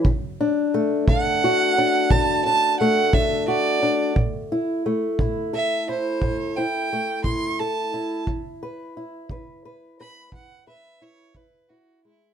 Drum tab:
BD |o--o--o--o--|o--o--o--o--|o--o--o--o--|